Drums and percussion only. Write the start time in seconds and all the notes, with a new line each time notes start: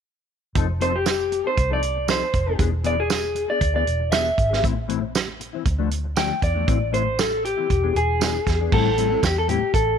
0.55 kick, closed hi-hat
0.81 closed hi-hat
1.06 snare, closed hi-hat, tambourine
1.32 closed hi-hat
1.57 kick, closed hi-hat
1.83 closed hi-hat
2.08 snare, closed hi-hat, tambourine
2.34 kick, closed hi-hat
2.59 kick, closed hi-hat
2.84 closed hi-hat
3.10 snare, closed hi-hat, tambourine
3.36 closed hi-hat
3.61 kick, closed hi-hat
3.87 closed hi-hat
4.12 snare, closed hi-hat, tambourine
4.38 kick, closed hi-hat
4.53 snare
4.64 kick, closed hi-hat
4.89 closed hi-hat
5.15 snare, closed hi-hat, tambourine
5.41 closed hi-hat
5.65 kick, closed hi-hat
5.91 closed hi-hat
6.17 snare, closed hi-hat, tambourine
6.42 kick, closed hi-hat
6.68 kick, closed hi-hat
6.94 closed hi-hat
7.19 snare, closed hi-hat, tambourine
7.45 closed hi-hat
7.70 kick, closed hi-hat
7.96 closed hi-hat
8.21 snare, closed hi-hat, tambourine
8.47 kick, snare, closed hi-hat
8.72 kick, crash
8.98 closed hi-hat
9.23 kick, snare, closed hi-hat, tambourine
9.49 closed hi-hat
9.74 kick, closed hi-hat